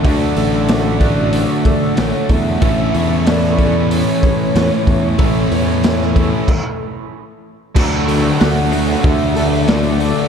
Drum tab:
CC |----------------|----------------|--------x-------|x---------------|
HH |o-o-o-o-o-o-o-o-|o-o-o-o-o-o-o-o-|o-o-o-o---------|--o-o-o-o-o-o-o-|
SD |----o-------o---|----oo------o---|----oo----------|----o-------o---|
BD |o-----o---o---o-|o-----o---o---o-|o-----o-o-------|o-------o-------|